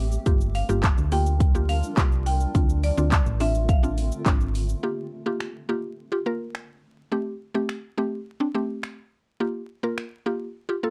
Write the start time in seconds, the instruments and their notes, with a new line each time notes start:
Already playing: fm bass A1, ambient pad A3 C4 G4
0.12 shaker
0.26 fm bass G1, ambient pad G3 D4 F4 A#4, synth pluck A#3 F4 G4, kick, closed hi-hat, shaker
0.41 shaker
0.55 marimba F5, open hi-hat, shaker
0.69 fm bass G1, synth pluck A#3 F4 G4, shaker
0.83 kick, clap, closed hi-hat, shaker
0.98 fm bass D2, shaker
1.12 synth pluck A#3 F4 G4, marimba G5, open hi-hat, shaker
1.26 shaker
1.40 kick, closed hi-hat, shaker
1.55 synth pluck A#3 F4 G4, shaker
1.69 marimba F5, open hi-hat, shaker
1.83 shaker
1.97 fm bass C2, synth pluck A#3 F4 G4, kick, clap, closed hi-hat, shaker
2.12 shaker
2.26 marimba G5, open hi-hat, shaker
2.40 shaker
2.55 fm bass D2, ambient pad D3 A3 C4 F4, synth pluck C4 D4 F4, kick, closed hi-hat, shaker
2.69 shaker
2.83 marimba D5, open hi-hat, shaker
2.97 fm bass D2, synth pluck C4 D4 F4, shaker
3.12 kick, clap, closed hi-hat, shaker
3.26 fm bass A1, shaker
3.40 synth pluck C4 D4 F4, marimba E5, open hi-hat, shaker
3.55 shaker
3.69 marimba F5, kick, closed hi-hat, shaker
3.83 synth pluck C4 D4 F4, shaker
3.98 open hi-hat, shaker
4.12 shaker
4.26 fm bass G#1, synth pluck C4 D4 F4, kick, clap, closed hi-hat, shaker
4.41 shaker
4.55 open hi-hat, shaker
4.69 shaker
4.83 synth pluck A#3 F4 G4
5.26 synth pluck A#3 F4 G4
5.40 finger snap
5.69 synth pluck A#3 F4 G4
6.12 synth pluck F4 G4
6.26 synth pluck A#3 F4 A#4
6.55 finger snap
7.12 synth pluck A3 C4 G4
7.54 synth pluck A3 C4 G4
7.69 finger snap
7.97 synth pluck A3 C4 G4
8.40 synth pluck C4 D4
8.55 synth pluck A3 C4 G4
8.83 finger snap
9.40 synth pluck A#3 F4 G4
9.83 synth pluck A#3 F4 A#4
9.98 finger snap
10.26 synth pluck A#3 F4 G4
10.69 synth pluck F4 G4
10.83 synth pluck A#3 F4 A4